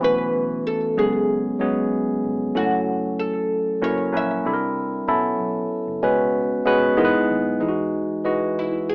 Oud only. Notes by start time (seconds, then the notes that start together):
0.04 B4
0.67 A4
0.99 G#4
2.57 F#4
3.19 A4
3.84 C#5
4.17 E5
8.59 E4
8.89 G#4